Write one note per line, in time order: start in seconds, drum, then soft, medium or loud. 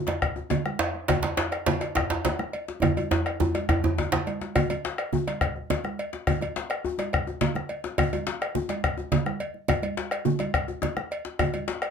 0.07 bombo rim soft
0.07 cowbell soft
0.07 djembe slap medium
0.07 high conga medium
0.22 bombo rim loud
0.22 bombo low loud
0.22 cowbell soft
0.36 djembe slap soft
0.36 djembe tone medium
0.50 cowbell medium
0.50 djembe slap medium
0.50 high conga soft
0.50 djembe bass medium
0.50 low conga medium
0.65 bombo rim medium
0.65 high conga medium
0.79 cowbell soft
0.79 djembe slap loud
0.79 high conga soft
0.94 high conga soft
1.08 bombo rim loud
1.08 bombo low loud
1.08 cowbell medium
1.08 djembe slap medium
1.08 djembe bass medium
1.08 low conga medium
1.23 cowbell soft
1.23 djembe slap medium
1.23 djembe slap soft
1.23 djembe tone medium
1.23 high conga medium
1.37 djembe slap medium
1.37 high conga soft
1.52 bombo rim medium
1.52 cowbell soft
1.66 bombo rim soft
1.66 djembe slap medium
1.66 djembe bass medium
1.66 low conga medium
1.81 bombo rim soft
1.81 cowbell medium
1.81 djembe slap medium
1.95 bombo rim loud
1.95 bombo low medium
1.95 cowbell medium
1.95 djembe slap medium
2.10 djembe slap medium
2.10 djembe slap soft
2.10 djembe tone medium
2.25 cowbell soft
2.25 djembe slap medium
2.25 high conga soft
2.25 low conga medium
2.25 djembe bass medium
2.39 bombo rim medium
2.39 djembe slap soft
2.39 high conga medium
2.53 bombo rim soft
2.53 cowbell soft
2.53 high conga soft
2.68 djembe slap medium
2.68 high conga soft
2.82 bombo rim medium
2.82 bombo low medium
2.82 cowbell medium
2.82 djembe slap soft
2.82 djembe tone medium
2.82 djembe bass medium
2.82 low conga medium
2.97 cowbell medium
2.97 djembe tone medium
2.97 high conga medium
3.11 djembe slap medium
3.11 djembe tone loud
3.26 bombo rim medium
3.26 cowbell soft
3.26 high conga soft
3.40 bombo rim soft
3.40 high conga soft
3.40 djembe tone loud
3.40 low conga medium
3.40 djembe bass medium
3.54 bombo rim soft
3.54 cowbell medium
3.54 djembe slap medium
3.54 high conga medium
3.69 bombo rim loud
3.69 bombo low loud
3.69 cowbell soft
3.69 djembe tone loud
3.83 djembe slap soft
3.83 djembe tone medium
3.83 djembe tone loud
3.83 low conga soft
3.98 bombo rim soft
3.98 cowbell soft
3.98 djembe slap medium
3.98 low conga soft
3.98 djembe bass medium
4.12 bombo rim medium
4.12 djembe slap medium
4.12 low conga medium
4.12 djembe bass soft
4.27 cowbell soft
4.27 djembe slap soft
4.27 high conga medium
4.41 djembe slap medium
4.41 high conga medium
4.56 bombo rim loud
4.56 bombo low medium
4.56 cowbell medium
4.56 djembe bass medium
4.56 low conga medium
4.70 cowbell medium
4.70 djembe slap soft
4.70 djembe tone medium
4.70 high conga medium
4.84 djembe slap medium
4.84 high conga soft
4.98 bombo rim medium
4.98 cowbell soft
5.13 bombo rim soft
5.13 low conga medium
5.13 djembe bass medium
5.27 bombo rim soft
5.27 cowbell medium
5.27 djembe slap medium
5.27 high conga medium
5.41 bombo rim loud
5.41 bombo low loud
5.41 cowbell medium
5.56 djembe slap soft
5.70 cowbell medium
5.70 djembe slap medium
5.70 high conga soft
5.70 low conga medium
5.70 djembe bass medium
5.84 bombo rim medium
5.84 djembe slap soft
5.84 high conga medium
5.99 bombo rim soft
5.99 cowbell medium
5.99 high conga soft
6.13 djembe slap medium
6.13 high conga soft
6.27 bombo rim loud
6.27 bombo low loud
6.27 cowbell medium
6.27 djembe bass medium
6.27 low conga medium
6.41 cowbell medium
6.41 djembe slap soft
6.41 djembe tone medium
6.41 high conga medium
6.56 djembe slap medium
6.56 high conga soft
6.70 bombo rim loud
6.70 cowbell soft
6.85 bombo rim soft
6.85 djembe bass medium
6.98 bombo rim soft
6.98 cowbell medium
6.98 djembe slap medium
6.98 high conga medium
7.13 bombo rim loud
7.13 bombo low loud
7.13 cowbell medium
7.27 djembe slap soft
7.27 djembe tone medium
7.41 cowbell medium
7.41 djembe slap medium
7.41 high conga soft
7.41 djembe bass medium
7.41 low conga medium
7.55 bombo rim medium
7.55 djembe slap soft
7.55 high conga medium
7.69 bombo rim soft
7.69 cowbell soft
7.69 high conga soft
7.84 djembe slap medium
7.84 high conga soft
7.98 bombo rim loud
7.98 bombo low loud
7.98 cowbell medium
7.98 djembe bass loud
7.98 low conga medium
8.13 cowbell medium
8.13 djembe slap soft
8.13 djembe tone medium
8.13 high conga medium
8.27 djembe slap loud
8.27 high conga soft
8.42 bombo rim loud
8.42 cowbell medium
8.55 djembe bass medium
8.55 low conga medium
8.69 bombo rim soft
8.69 cowbell medium
8.69 djembe slap medium
8.69 high conga medium
8.84 bombo rim loud
8.84 bombo low loud
8.84 cowbell soft
8.97 djembe slap soft
8.97 djembe tone medium
9.12 cowbell medium
9.12 djembe slap medium
9.12 high conga soft
9.12 low conga medium
9.12 djembe bass medium
9.26 bombo rim medium
9.26 djembe slap soft
9.26 high conga medium
9.40 bombo rim soft
9.40 cowbell medium
9.40 high conga soft
9.54 high conga soft
9.68 bombo rim loud
9.68 bombo low loud
9.68 cowbell medium
9.68 djembe slap soft
9.68 high conga soft
9.68 low conga medium
9.68 djembe bass medium
9.83 cowbell medium
9.83 high conga medium
9.97 djembe slap medium
10.11 bombo rim medium
10.11 cowbell medium
10.11 djembe slap soft
10.25 djembe bass medium
10.25 low conga medium
10.39 bombo rim soft
10.39 cowbell medium
10.39 djembe slap medium
10.39 high conga medium
10.54 bombo rim loud
10.54 bombo low loud
10.54 cowbell soft
10.54 djembe slap soft
10.68 djembe slap soft
10.68 djembe tone medium
10.82 cowbell soft
10.82 djembe slap medium
10.82 djembe bass medium
10.82 low conga medium
10.97 bombo rim medium
10.97 high conga medium
11.11 bombo rim soft
11.11 cowbell soft
11.25 djembe slap medium
11.39 bombo rim loud
11.39 bombo low loud
11.39 cowbell medium
11.39 djembe bass medium
11.39 low conga medium
11.53 cowbell soft
11.53 djembe slap soft
11.53 djembe tone medium
11.53 high conga medium
11.68 djembe slap medium
11.68 high conga soft
11.82 bombo rim medium
11.82 cowbell soft